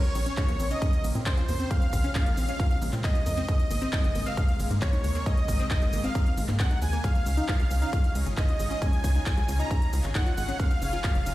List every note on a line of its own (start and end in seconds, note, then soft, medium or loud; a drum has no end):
0.00 7.00 C3 medium
0.00 3.45 C#3 medium
0.00 1.69 A#3 medium
0.00 0.33 C#5 loud
0.00 closed hi-hat medium
0.00 shaker soft
0.15 0.31 A#1 medium
0.15 0.19 C4 medium
0.15 open hi-hat loud
0.15 ride medium
0.15 shaker medium
0.26 0.33 C#4 loud
0.26 closed hi-hat medium
0.26 shaker soft
0.37 0.47 F4 medium
0.37 0.67 C#5 loud
0.37 kick loud
0.37 clap loud
0.37 closed hi-hat medium
0.37 ride medium
0.37 shaker soft
0.48 0.56 A#1 medium
0.48 0.55 A#3 medium
0.48 closed hi-hat medium
0.48 shaker soft
0.60 0.75 A#1 medium
0.60 0.63 C4 medium
0.60 open hi-hat loud
0.60 ride medium
0.60 shaker medium
0.71 0.80 C#4 loud
0.71 1.01 D#5 medium
0.71 closed hi-hat medium
0.71 shaker soft
0.82 0.86 F4 medium
0.82 kick loud
0.82 closed hi-hat medium
0.82 ride medium
0.82 shaker soft
0.93 closed hi-hat medium
0.93 shaker soft
1.04 1.12 A#1 loud
1.04 1.08 A#3 medium
1.04 open hi-hat loud
1.04 ride medium
1.04 shaker medium
1.15 1.31 A#2 medium
1.15 1.21 C4 medium
1.15 closed hi-hat medium
1.15 shaker soft
1.26 1.36 C#4 medium
1.26 1.46 C5 loud
1.26 kick loud
1.26 clap loud
1.26 closed hi-hat medium
1.26 ride medium
1.26 shaker soft
1.37 1.44 F4 medium
1.37 closed hi-hat medium
1.37 shaker soft
1.49 1.64 F2 medium
1.49 1.55 A#3 medium
1.49 1.68 C5 medium
1.49 open hi-hat loud
1.49 ride medium
1.49 shaker medium
1.60 1.69 C4 loud
1.60 closed hi-hat medium
1.60 shaker soft
1.71 3.47 G#3 medium
1.71 1.74 A#3 medium
1.71 2.11 F5 loud
1.71 kick loud
1.71 closed hi-hat medium
1.71 ride medium
1.71 shaker soft
1.82 closed hi-hat medium
1.82 shaker soft
1.93 2.09 A#1 loud
1.93 1.97 C4 medium
1.93 kick medium
1.93 open hi-hat loud
1.93 ride medium
1.93 shaker medium
2.04 2.10 C#4 loud
2.04 closed hi-hat medium
2.04 shaker soft
2.15 2.25 F4 medium
2.15 2.45 F5 loud
2.15 kick loud
2.15 clap loud
2.15 closed hi-hat medium
2.15 ride medium
2.15 shaker soft
2.26 2.34 A#1 medium
2.26 2.33 A#3 medium
2.26 closed hi-hat medium
2.26 shaker soft
2.37 2.53 A#1 medium
2.37 2.41 C4 medium
2.37 open hi-hat loud
2.37 ride medium
2.37 shaker medium
2.49 2.58 C#4 loud
2.49 2.78 F5 loud
2.49 closed hi-hat medium
2.49 shaker soft
2.60 2.63 F4 medium
2.60 kick loud
2.60 closed hi-hat medium
2.60 ride medium
2.60 shaker soft
2.71 closed hi-hat medium
2.71 shaker soft
2.82 2.90 A#1 loud
2.82 2.86 A#3 medium
2.82 open hi-hat loud
2.82 ride medium
2.82 shaker medium
2.93 3.09 A#2 medium
2.93 2.99 C4 medium
2.93 clap soft
2.93 closed hi-hat medium
2.93 shaker soft
3.04 3.13 C#4 medium
3.04 3.24 D#5 medium
3.04 kick loud
3.04 clap loud
3.04 closed hi-hat medium
3.04 ride medium
3.04 shaker soft
3.15 3.21 F4 medium
3.15 closed hi-hat medium
3.15 shaker soft
3.26 3.42 F2 medium
3.26 3.33 A#3 medium
3.26 3.46 D#5 loud
3.26 open hi-hat loud
3.26 ride medium
3.26 shaker medium
3.37 3.47 C4 loud
3.37 closed hi-hat medium
3.37 shaker soft
3.48 3.52 G#3 medium
3.48 7.01 G#3 medium
3.48 7.01 A#3 medium
3.48 3.88 D#5 loud
3.48 kick loud
3.48 closed hi-hat medium
3.48 ride medium
3.48 shaker soft
3.60 closed hi-hat medium
3.60 shaker soft
3.71 3.87 G#1 medium
3.71 3.74 A#3 medium
3.71 open hi-hat loud
3.71 ride medium
3.71 shaker medium
3.82 3.88 C4 loud
3.82 closed hi-hat medium
3.82 shaker soft
3.93 4.02 D#4 medium
3.93 4.23 D#5 loud
3.93 kick loud
3.93 clap loud
3.93 closed hi-hat medium
3.93 shaker soft
4.04 4.12 G#1 medium
4.04 4.10 G#3 medium
4.04 closed hi-hat medium
4.04 shaker soft
4.15 4.31 G#1 medium
4.15 4.19 A#3 medium
4.15 open hi-hat loud
4.15 ride medium
4.15 shaker medium
4.26 4.36 C4 loud
4.26 4.56 F5 medium
4.26 closed hi-hat medium
4.26 shaker soft
4.37 4.41 D#4 medium
4.37 kick loud
4.37 closed hi-hat medium
4.37 ride medium
4.37 shaker soft
4.49 closed hi-hat medium
4.49 shaker soft
4.60 4.68 G#1 loud
4.60 4.63 G#3 medium
4.60 open hi-hat loud
4.60 ride medium
4.60 shaker medium
4.71 4.87 G#2 medium
4.71 4.77 A#3 medium
4.71 closed hi-hat medium
4.71 shaker soft
4.82 4.91 C4 medium
4.82 5.02 C#5 medium
4.82 kick loud
4.82 clap loud
4.82 closed hi-hat medium
4.82 ride medium
4.82 shaker soft
4.93 4.99 D#4 medium
4.93 closed hi-hat medium
4.93 shaker soft
5.04 5.20 D#2 medium
5.04 5.10 G#3 medium
5.04 5.24 C#5 loud
5.04 open hi-hat loud
5.04 ride medium
5.04 shaker medium
5.15 5.25 A#3 loud
5.15 closed hi-hat soft
5.15 shaker soft
5.26 5.30 G#3 medium
5.26 5.66 D#5 loud
5.26 kick loud
5.26 closed hi-hat medium
5.26 ride medium
5.26 shaker soft
5.37 closed hi-hat medium
5.37 shaker soft
5.48 5.64 G#1 loud
5.48 5.52 A#3 medium
5.48 kick medium
5.48 open hi-hat loud
5.48 ride medium
5.48 shaker medium
5.60 5.66 C4 loud
5.60 closed hi-hat medium
5.60 shaker soft
5.71 5.80 D#4 medium
5.71 6.01 D#5 loud
5.71 kick loud
5.71 clap loud
5.71 closed hi-hat medium
5.71 shaker soft
5.82 5.90 G#1 medium
5.82 5.88 G#3 medium
5.82 closed hi-hat medium
5.82 shaker soft
5.93 6.09 G#1 medium
5.93 5.97 A#3 medium
5.93 open hi-hat loud
5.93 ride medium
5.93 shaker medium
6.04 6.13 C4 loud
6.04 6.34 F5 medium
6.04 closed hi-hat medium
6.04 shaker soft
6.15 6.19 D#4 medium
6.15 kick loud
6.15 closed hi-hat medium
6.15 ride medium
6.15 shaker soft
6.26 closed hi-hat soft
6.26 shaker soft
6.37 6.45 G#1 loud
6.37 6.41 G#3 medium
6.37 open hi-hat loud
6.37 ride medium
6.37 shaker medium
6.48 6.64 G#2 medium
6.48 6.55 A#3 medium
6.48 clap soft
6.48 closed hi-hat medium
6.48 shaker soft
6.60 6.69 C4 medium
6.60 6.80 F#5 medium
6.60 kick loud
6.60 clap loud
6.60 closed hi-hat medium
6.60 shaker soft
6.71 6.77 D#4 medium
6.71 closed hi-hat medium
6.71 shaker soft
6.82 6.98 D#2 medium
6.82 6.88 G#3 medium
6.82 7.02 G#5 loud
6.82 open hi-hat loud
6.82 ride medium
6.82 shaker medium
6.93 7.02 A#3 loud
6.93 closed hi-hat soft
6.93 shaker soft
7.04 10.56 C#3 medium
7.04 7.08 G#3 medium
7.04 11.35 C#4 medium
7.04 10.56 D#4 medium
7.04 11.35 F4 medium
7.04 11.35 G#4 medium
7.04 7.44 F5 loud
7.04 kick loud
7.04 closed hi-hat medium
7.04 ride medium
7.04 shaker soft
7.15 closed hi-hat soft
7.15 shaker soft
7.26 7.42 C#2 medium
7.26 7.30 C#4 medium
7.26 open hi-hat loud
7.26 ride medium
7.26 shaker medium
7.37 7.44 D#4 loud
7.37 closed hi-hat medium
7.37 shaker soft
7.48 7.58 F4 medium
7.48 7.78 F5 loud
7.48 kick loud
7.48 clap loud
7.48 closed hi-hat medium
7.48 ride medium
7.48 shaker soft
7.60 7.68 C#2 medium
7.60 7.66 G#3 medium
7.60 closed hi-hat medium
7.60 shaker soft
7.71 7.87 C#2 medium
7.71 7.74 C#4 medium
7.71 open hi-hat loud
7.71 ride medium
7.71 shaker medium
7.82 7.91 D#4 loud
7.82 8.12 F5 medium
7.82 closed hi-hat medium
7.82 shaker soft
7.93 7.97 F4 medium
7.93 kick loud
7.93 closed hi-hat medium
7.93 ride medium
7.93 shaker soft
8.04 closed hi-hat medium
8.04 shaker soft
8.15 8.23 C#2 loud
8.15 8.19 G#3 medium
8.15 open hi-hat loud
8.15 ride medium
8.15 shaker medium
8.26 8.42 G#1 medium
8.26 8.33 C#4 medium
8.26 closed hi-hat medium
8.26 shaker soft
8.37 8.47 D#4 medium
8.37 8.57 D#5 medium
8.37 kick loud
8.37 clap loud
8.37 closed hi-hat medium
8.37 shaker soft
8.48 8.55 F4 medium
8.48 closed hi-hat medium
8.48 shaker soft
8.60 8.75 G#1 medium
8.60 8.66 G#3 medium
8.60 8.80 D#5 loud
8.60 open hi-hat loud
8.60 ride medium
8.60 shaker medium
8.71 8.80 C#4 loud
8.71 closed hi-hat soft
8.71 shaker soft
8.82 8.86 G#3 medium
8.82 9.22 G#5 loud
8.82 kick loud
8.82 closed hi-hat medium
8.82 ride medium
8.82 shaker soft
8.93 closed hi-hat medium
8.93 shaker soft
9.04 9.20 C#2 loud
9.04 9.08 C#4 medium
9.04 kick medium
9.04 open hi-hat loud
9.04 ride medium
9.04 shaker medium
9.15 9.21 D#4 loud
9.15 closed hi-hat medium
9.15 shaker soft
9.26 9.36 F4 medium
9.26 9.56 G#5 loud
9.26 kick loud
9.26 clap loud
9.26 closed hi-hat medium
9.26 ride medium
9.26 shaker soft
9.37 9.45 C#2 medium
9.37 9.44 G#3 medium
9.37 closed hi-hat medium
9.37 shaker soft
9.49 9.64 C#2 medium
9.49 9.52 C#4 medium
9.49 open hi-hat medium
9.49 ride medium
9.49 shaker medium
9.60 9.69 D#4 loud
9.60 9.90 A#5 medium
9.60 closed hi-hat medium
9.60 shaker soft
9.71 9.74 F4 medium
9.71 kick loud
9.71 closed hi-hat medium
9.71 ride medium
9.71 shaker soft
9.82 closed hi-hat medium
9.82 shaker soft
9.93 10.01 C#2 loud
9.93 9.97 G#3 medium
9.93 open hi-hat loud
9.93 ride medium
9.93 shaker medium
10.04 10.20 G#1 medium
10.04 10.10 C#4 medium
10.04 clap soft
10.04 closed hi-hat medium
10.04 shaker soft
10.15 10.25 D#4 medium
10.15 10.35 F#5 medium
10.15 kick loud
10.15 clap loud
10.15 closed hi-hat medium
10.15 ride medium
10.15 shaker soft
10.26 10.33 F4 medium
10.26 closed hi-hat medium
10.26 shaker soft
10.37 10.53 G#1 medium
10.37 10.44 G#3 medium
10.37 10.57 F#5 loud
10.37 open hi-hat medium
10.37 ride medium
10.37 shaker medium
10.48 10.58 C#4 loud
10.48 closed hi-hat medium
10.48 shaker soft
10.60 11.35 F#3 medium
10.60 10.63 A#3 medium
10.60 11.35 A#4 medium
10.60 11.00 F5 loud
10.60 kick loud
10.60 closed hi-hat medium
10.60 ride medium
10.60 shaker soft
10.71 closed hi-hat medium
10.71 shaker soft
10.82 10.98 F#1 loud
10.82 10.86 C#4 medium
10.82 open hi-hat loud
10.82 ride medium
10.82 shaker medium
10.93 10.99 F4 loud
10.93 closed hi-hat medium
10.93 shaker soft
11.04 11.13 F#4 medium
11.04 11.34 F5 loud
11.04 kick loud
11.04 clap loud
11.04 closed hi-hat medium
11.04 ride medium
11.04 shaker soft
11.15 11.23 F#1 medium
11.15 11.21 A#3 medium
11.15 closed hi-hat medium
11.15 shaker soft
11.26 11.35 F#1 medium
11.26 11.30 C#4 medium
11.26 open hi-hat medium
11.26 ride medium
11.26 shaker medium